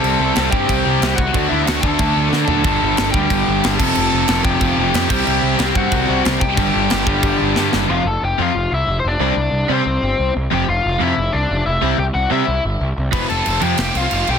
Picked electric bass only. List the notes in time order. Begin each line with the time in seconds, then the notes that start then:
0.04 C2
0.19 C2
0.37 C2
0.53 G2
0.70 C2
0.86 C2
1.02 C2
1.18 C2
1.35 D2
1.51 D2
1.68 D2
1.84 D2
2.00 D2
2.16 D2
2.32 D3
2.49 D2
2.65 G1
2.83 G1
2.98 G1
3.14 D2
3.31 G1
3.48 G1
3.65 G1
3.80 F1
3.97 F1
4.12 F1
4.28 F1
4.45 F1
4.61 F1
4.78 F1
4.94 F2
5.10 C2
5.27 C2
5.43 C2
5.59 C2
5.76 G2
5.92 C2
6.09 C2
6.26 C2
6.42 C2
6.57 G1
6.75 G1
6.92 G1
7.07 G1
7.23 G1
7.42 G1
7.57 G2
7.73 F#1
7.88 F1
8.05 F1
8.22 F1
8.39 F2
8.55 F1
8.72 C2
8.88 F1
9.04 F1
9.19 C2
9.36 C2
9.52 C2
9.69 C3
9.86 C2
10.02 G1
10.19 C2
10.36 C2
10.52 F1
10.68 F1
10.85 F1
11.01 F2
11.18 F1
11.34 C2
11.51 F1
11.66 F1
11.82 C2
11.98 C2
12.15 C2
12.31 C3
12.48 C2
12.65 G1
12.81 C2
12.98 C2
13.13 F1
13.30 F1
13.47 F1
13.62 F2
13.79 F1
13.95 C2
14.12 F1
14.28 B1